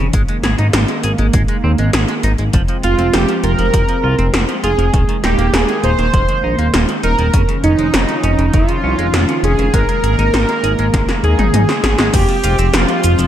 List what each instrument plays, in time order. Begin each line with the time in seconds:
Already playing: analog synth pad D#3 F3 C#4
0.00 analog synth bass F1
0.13 analog synth bass G#1, analog synth pad G#3 A#3, clean electric guitar G#3, kick, closed hi-hat
0.29 clean electric guitar G#3, closed hi-hat
0.44 analog synth bass G#1, clean electric guitar G#4, snare, closed hi-hat
0.59 analog synth bass G#1, clean electric guitar D#4, closed hi-hat
0.73 analog synth bass G#1, clean electric guitar G#3, snare, closed hi-hat
0.88 clean electric guitar G#3, closed hi-hat
1.04 analog synth bass G#1, clean electric guitar G#4, closed hi-hat
1.18 analog synth bass G#1, clean electric guitar G#3, closed hi-hat
1.33 analog synth bass G#1, clean electric guitar G#3, kick, closed hi-hat
1.48 clean electric guitar G#3, closed hi-hat
1.64 analog synth bass D#2, clean electric guitar C4
1.78 analog synth bass G#1, clean electric guitar G#3, closed hi-hat
1.93 analog synth bass G#1, clean electric guitar G#4, snare, closed hi-hat
2.08 clean electric guitar G#3, closed hi-hat
2.23 analog synth bass G#1, clean electric guitar D#4, closed hi-hat
2.38 analog synth bass G#1, clean electric guitar G#3, closed hi-hat
2.53 analog synth bass F1, clean electric guitar F3, analog synth pad F3 C4, kick, closed hi-hat
2.68 clean electric guitar F3, closed hi-hat
2.83 analog synth bass F1, clean electric guitar F4, supersaw synth F4, closed hi-hat
2.99 analog synth bass F1, clean electric guitar C4, closed hi-hat
3.14 analog synth bass F1, clean electric guitar C4, supersaw synth G4, snare, closed hi-hat
3.29 clean electric guitar F3, closed hi-hat
3.44 analog synth bass F1, clean electric guitar F4, supersaw synth A#4, closed hi-hat
3.59 analog synth bass F1, clean electric guitar F3, closed hi-hat
3.74 analog synth bass F1, clean electric guitar F3, kick, closed hi-hat
3.89 clean electric guitar F3, closed hi-hat
4.04 analog synth bass C2, clean electric guitar F4
4.19 analog synth bass F1, clean electric guitar C4, closed hi-hat
4.34 analog synth bass F1, clean electric guitar C4, snare, closed hi-hat
4.48 clean electric guitar F3, closed hi-hat
4.64 analog synth bass F1, clean electric guitar F4, supersaw synth G#4, closed hi-hat
4.78 analog synth bass F1, clean electric guitar F3, closed hi-hat
4.93 analog synth bass D#1, clean electric guitar D#3, analog synth pad D#3 A#3, kick, closed hi-hat
5.09 clean electric guitar D#3, closed hi-hat
5.24 analog synth bass D#1, clean electric guitar D#4, supersaw synth G4, snare, closed hi-hat
5.38 analog synth bass D#1, clean electric guitar A#3, closed hi-hat
5.54 analog synth bass D#1, clean electric guitar A#3, supersaw synth G#4, snare, closed hi-hat
5.69 clean electric guitar D#3, closed hi-hat
5.84 analog synth bass D#1, clean electric guitar D#4, supersaw synth C5, closed hi-hat
5.99 analog synth bass D#1, clean electric guitar D#3, closed hi-hat
6.14 analog synth bass D#1, clean electric guitar D#3, kick, closed hi-hat
6.29 clean electric guitar D#3, closed hi-hat
6.44 analog synth bass A#1, clean electric guitar D#4
6.59 analog synth bass D#1, clean electric guitar A#3, closed hi-hat
6.74 analog synth bass D#1, clean electric guitar A#3, snare, closed hi-hat
6.89 clean electric guitar D#3, closed hi-hat
7.03 analog synth bass D#1, clean electric guitar D#4, supersaw synth A#4, closed hi-hat
7.19 analog synth bass D#1, clean electric guitar D#3, closed hi-hat
7.33 analog synth bass F1, clean electric guitar C#3, analog synth pad F3 C#4, kick, closed hi-hat
7.49 clean electric guitar C#3, closed hi-hat
7.64 analog synth bass F1, clean electric guitar C#4, supersaw synth D#4, closed hi-hat
7.79 analog synth bass F1, clean electric guitar G#3, closed hi-hat
7.94 analog synth bass F1, clean electric guitar G#3, snare, closed hi-hat
8.09 clean electric guitar C#3, closed hi-hat
8.24 analog synth bass F1, clean electric guitar C#4, closed hi-hat
8.38 analog synth bass F1, clean electric guitar C#3, closed hi-hat
8.53 analog synth bass F1, clean electric guitar C#3, supersaw synth F4, kick, closed hi-hat
8.68 clean electric guitar C#3, closed hi-hat
8.84 analog synth bass C2, clean electric guitar C#4
8.98 analog synth bass F1, clean electric guitar G#3, closed hi-hat
9.13 analog synth bass F1, clean electric guitar G#3, snare, closed hi-hat
9.29 clean electric guitar C#3, closed hi-hat
9.43 analog synth bass F1, clean electric guitar C#4, supersaw synth G#4, closed hi-hat
9.59 analog synth bass F1, clean electric guitar C#3, closed hi-hat
9.74 analog synth bass G#1, clean electric guitar G#3, analog synth pad G#3 A#3, supersaw synth A#4, kick, closed hi-hat
9.89 clean electric guitar G#3, closed hi-hat
10.04 analog synth bass G#1, clean electric guitar G#4, closed hi-hat
10.19 analog synth bass G#1, clean electric guitar D#4, closed hi-hat
10.34 analog synth bass G#1, clean electric guitar D#4, snare, closed hi-hat
10.49 clean electric guitar G#3, closed hi-hat
10.64 analog synth bass G#1, clean electric guitar G#4, closed hi-hat
10.79 analog synth bass G#1, clean electric guitar G#3, closed hi-hat
10.94 analog synth bass G#1, clean electric guitar G#3, kick, snare, closed hi-hat
11.09 clean electric guitar G#3, snare, closed hi-hat
11.24 analog synth bass D#2, supersaw synth G#4, clean electric guitar G#4, closed hi-hat
11.39 analog synth bass G#1, clean electric guitar D#4, closed hi-hat, mid tom
11.54 analog synth bass G#1, clean electric guitar D#4, closed hi-hat, mid tom
11.69 clean electric guitar G#3, snare, closed hi-hat
11.84 analog synth bass G#1, clean electric guitar G#4, snare, closed hi-hat
11.99 analog synth bass G#1, clean electric guitar G#3, snare, closed hi-hat
12.14 analog synth bass F1, clean electric guitar F3, analog synth pad F3 G#3 C4, supersaw synth G4, kick, closed hi-hat, crash, shaker
12.29 clean electric guitar F3, closed hi-hat
12.44 analog synth bass F1, clean electric guitar F4, closed hi-hat, shaker
12.59 analog synth bass F1, clean electric guitar C4, closed hi-hat, shaker
12.74 analog synth bass F1, clean electric guitar C4, supersaw synth F4, snare, closed hi-hat, shaker
12.89 clean electric guitar F3, closed hi-hat
13.04 analog synth bass F1, clean electric guitar F4, closed hi-hat, shaker
13.19 analog synth bass F1, clean electric guitar F3, closed hi-hat, shaker